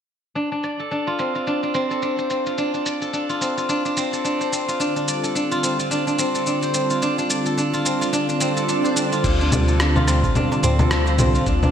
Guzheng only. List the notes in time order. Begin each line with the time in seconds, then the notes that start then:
0.35 D4
0.52 D4
0.64 D5
0.80 A4
0.91 D4
1.07 F4
1.19 C4
1.35 F4
1.47 D4
1.63 D4
1.74 C4
1.90 A4
2.02 D4
2.18 C5
2.30 C4
2.46 F4
2.58 D4
2.74 D4
2.86 D5
3.02 A4
3.13 D4
3.29 F4
3.41 C4
3.57 F4
3.69 D4
3.85 D4
3.97 C4
4.13 A4
4.24 D4
4.41 C5
4.52 C4
4.68 F4
4.80 D4
4.96 D4
5.08 D5
5.23 A4
5.35 D4
5.51 F4
5.63 C4
5.79 F4
5.91 D4
6.07 D4
6.19 C4
6.35 A4
6.47 D4
6.62 C5
6.74 C4
6.90 F4
7.02 D4
7.18 D4
7.30 D5
7.46 A4
7.58 D4
7.73 F4
7.85 C4
8.01 F4
8.13 D4
8.29 D4
8.40 C4
8.56 A4
8.68 D4
8.84 C5
8.96 C4
9.12 F4
9.24 D4
9.40 D4
9.52 D5
9.68 A4
9.80 D4
9.96 F4
10.08 C4
10.24 F4
10.35 D4
10.51 D4
10.63 C4
10.79 A4
10.91 D4
11.07 C5
11.19 C4
11.35 F4
11.46 D4
11.63 D4